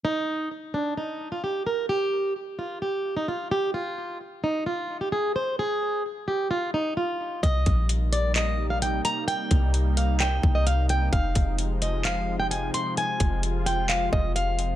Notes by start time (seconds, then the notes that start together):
0.05 D#4
0.74 D4
0.97 D#4
1.32 F4
1.44 G4
1.66 A#4
1.89 G4
2.59 F4
2.82 G4
3.17 D#4
3.28 F4
3.51 G4
3.74 F4
4.44 D#4
4.66 F4
5.01 G4
5.12 G#4
5.36 C5
5.59 G#4
6.28 G4
6.51 F4
6.74 D#4
6.97 F4
7.43 C2 C3 G3 A#3 D#4 D#5, kick, closed hi-hat
7.66 A#1, kick, closed hi-hat
7.89 closed hi-hat
8.13 D5, closed hi-hat
8.36 D#5, clap, closed hi-hat
8.70 F5
8.82 G5, closed hi-hat
9.05 A#5, closed hi-hat
9.28 G5, closed hi-hat
9.51 C2, kick, closed hi-hat
9.74 closed hi-hat
9.97 F5, closed hi-hat
10.20 G5, clap, closed hi-hat
10.43 C2, kick
10.55 D#5
10.67 F5, closed hi-hat
10.89 G5, closed hi-hat
11.13 F1 F3 G#3 F5, kick, closed hi-hat
11.35 F1, kick, closed hi-hat
11.59 closed hi-hat
11.82 D#5, closed hi-hat
12.05 F5, clap, closed hi-hat
12.40 G5
12.51 G#5, closed hi-hat
12.74 C6, closed hi-hat
12.97 F4 G#5, closed hi-hat
13.20 F1, kick, closed hi-hat
13.43 closed hi-hat
13.66 G5, closed hi-hat
13.89 F5, clap, closed hi-hat
14.13 F1 D#5, kick
14.36 F5, closed hi-hat
14.59 closed hi-hat